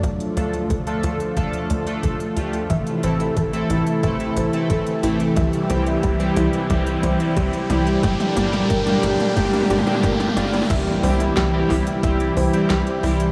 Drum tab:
CC |--------------------------------|--------------------------------|--------------------------------|--------------------------------|
HH |x-x-x-x-x-x-x-x-x-x-x-x-x-x-x-x-|x-x-x-x-x-x-x-x-x-x-x-x-x-x-x-x-|x-x-x-x-x-x-x-x-x-x-x-x-x-x-x-x-|x-x-x-x-x-x-x-x-x-x-x-x-x-x-x-x-|
SD |--------------------------------|--------------------------------|--------------------------------|--------------------------------|
T2 |o-------o-------o-------o-------|o-------o-------o-------o-------|o---o---o---o---o---o---o---o---|o-o-o-o-o-o-o-o-oooooooooooooooo|
BD |o-------o-------o-------o-------|o-------o-------o-------o-------|o-------o-------o-------o-------|o-------o-------o-------o-------|

CC |x-------------------------------|
HH |x---o-x-x---o-x-x-x-o-x-x-x-o-x-|
SD |--------o---o-----------o-------|
T2 |--------------------------------|
BD |o-----------o---o---------------|